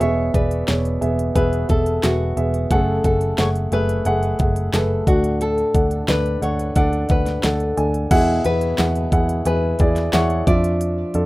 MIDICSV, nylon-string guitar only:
0, 0, Header, 1, 2, 480
1, 0, Start_track
1, 0, Tempo, 674916
1, 6, Time_signature, 4, 2, 24, 8
1, 8006, End_track
2, 0, Start_track
2, 0, Title_t, "Nylon-string guitar"
2, 0, Program_c, 0, 24
2, 3, Note_on_c, 0, 73, 85
2, 243, Note_off_c, 0, 73, 0
2, 246, Note_on_c, 0, 71, 72
2, 955, Note_off_c, 0, 71, 0
2, 964, Note_on_c, 0, 71, 70
2, 1204, Note_off_c, 0, 71, 0
2, 1207, Note_on_c, 0, 69, 70
2, 1447, Note_on_c, 0, 66, 74
2, 1454, Note_off_c, 0, 69, 0
2, 1932, Note_on_c, 0, 69, 82
2, 1941, Note_off_c, 0, 66, 0
2, 2163, Note_off_c, 0, 69, 0
2, 2172, Note_on_c, 0, 69, 73
2, 2392, Note_off_c, 0, 69, 0
2, 2411, Note_on_c, 0, 73, 76
2, 2475, Note_off_c, 0, 73, 0
2, 2653, Note_on_c, 0, 71, 86
2, 3341, Note_off_c, 0, 71, 0
2, 3375, Note_on_c, 0, 69, 79
2, 3612, Note_on_c, 0, 66, 75
2, 3618, Note_off_c, 0, 69, 0
2, 3833, Note_off_c, 0, 66, 0
2, 3851, Note_on_c, 0, 69, 91
2, 4300, Note_off_c, 0, 69, 0
2, 4333, Note_on_c, 0, 71, 79
2, 4572, Note_off_c, 0, 71, 0
2, 4575, Note_on_c, 0, 73, 82
2, 4812, Note_off_c, 0, 73, 0
2, 4815, Note_on_c, 0, 74, 80
2, 5054, Note_off_c, 0, 74, 0
2, 5057, Note_on_c, 0, 71, 77
2, 5293, Note_on_c, 0, 69, 72
2, 5299, Note_off_c, 0, 71, 0
2, 5625, Note_off_c, 0, 69, 0
2, 6013, Note_on_c, 0, 71, 80
2, 6723, Note_off_c, 0, 71, 0
2, 6731, Note_on_c, 0, 71, 75
2, 7209, Note_off_c, 0, 71, 0
2, 7212, Note_on_c, 0, 73, 89
2, 7443, Note_off_c, 0, 73, 0
2, 7446, Note_on_c, 0, 74, 92
2, 8006, Note_off_c, 0, 74, 0
2, 8006, End_track
0, 0, End_of_file